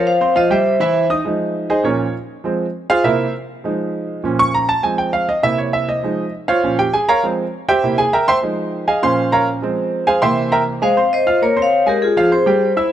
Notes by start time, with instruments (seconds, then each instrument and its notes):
Already playing: grand piano F3 F4 F5
0.07 vibraphone C5 F5
0.21 grand piano C4 C5 C6
0.35 grand piano F3 F4 F5, vibraphone C5 D#5
0.50 grand piano G3 G4 G5, vibraphone C5 E5
0.80 grand piano E3 E4 E5
1.10 grand piano D#4 D#5 D#6
1.25 grand piano F3 G#3 D#4
1.70 grand piano D#4 G#4 C5 D#5
1.84 grand piano A#2 F3 C#4 F4 A#4 C#5
2.44 grand piano F3 G#3 C4
2.90 grand piano F4 G#4 C5 F5
3.04 grand piano C3 A#3 E4 A#4 C5 E5
3.64 grand piano F3 G#3 D#4
4.24 grand piano A#2 F3 C#4
4.39 grand piano C#6
4.54 grand piano A#5
4.69 grand piano A5
4.83 grand piano F3 G#3 C4 G#5
4.98 grand piano G5
5.13 grand piano F5
5.29 grand piano D#5
5.43 grand piano C3 A#3 E4 E5
5.58 grand piano C#5
5.73 grand piano E5
5.89 grand piano D#5
6.03 grand piano F3 G#3 D#4
6.48 grand piano F4 C5 C#5 F5
6.63 grand piano A#2 F3 C#4
6.79 grand piano G4 G5
6.93 grand piano G#4 G#5
7.09 grand piano A#4 C#5 F5 A#5
7.23 grand piano F3 G#3 C4
7.69 grand piano G4 C5 E5 G5
7.83 grand piano C3 A#3 E4
7.98 grand piano G#4 G#5
8.13 grand piano A#4 E5 G5 A#5
8.28 grand piano C5 E5 G5 C6
8.42 grand piano F3 G#3 D#4
8.88 grand piano G#4 D#5 F5 G#5
9.02 grand piano A#2 F3 C#4 C5 F5 C6
9.32 grand piano A#4 C#5 F5 A#5
9.62 grand piano F3 G#3 C4
10.07 grand piano G#4 C5 F5 G#5
10.22 grand piano C3 E3 A#3 C5 E5 G5 C6
10.52 grand piano A#4 E5 G5 A#5
10.82 grand piano G#3 G#4 G#5, vibraphone C5 F5
10.97 grand piano C4 C5 C6
11.13 vibraphone C5 D#5
11.27 grand piano F4 F5 F6
11.42 grand piano A#3 A#4 A#5, vibraphone A#4 C#5
11.56 grand piano C4 C5 C6
11.62 vibraphone C#5 F5
11.86 grand piano G#3 G#4 G#5, vibraphone G4 A#4
12.02 vibraphone F4 G#4
12.17 grand piano F3 F4 F5
12.31 grand piano C4 C5 C6, vibraphone G#4 C5
12.46 grand piano G3 G4 G5
12.77 grand piano E4 E5 E6